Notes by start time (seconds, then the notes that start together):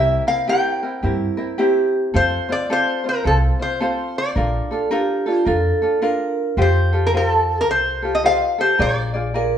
Already playing: C2 C4 E4 G4 A#4 E5
0.27 C4 E4 A#4 F5
0.48 C4 E4 G4 A#4 G5
0.83 C4 E4 A#4
1.03 G2 C4 E4 G4 A#4
1.37 C4 E4 A#4
1.58 C4 E4 G4 A#4
2.14 F2 C4 F4 A4 C5
2.49 C4 F4 C5 D5
2.70 C4 F4 A4 C5
3.04 C4 F4 C5
3.09 A#4
3.24 C2 C4 F4 A4 C5
3.59 C4 F4 C5
3.80 C4 F4 A4 C5
4.18 D5
4.36 A#1 D4 F4 A4 A#4
4.71 D4 F4 A4
4.91 D4 F4 G4 A4 A#4
5.26 D4 F4 A4
5.37 C5
5.45 F2 D4 F4 A4 A#4
5.82 D4 F4 A4
6.02 D4 F4 A#4
6.57 F2 F4 G4 A4 C5
6.62 C5
6.93 F4 G4 A4
7.07 A#4
7.14 F4 G4 A4 A#4 C5
7.28 A4
7.61 A#4
7.68 C2 C5
8.02 F4 G4 A4
8.15 D#5
8.24 F4 G4 A4 C5 F5
8.58 F4 G4 A4 C5
8.78 A#1 F4 G#4 A#4 D5
9.14 F4 G#4 D5
9.34 F4 G#4 A#4 D5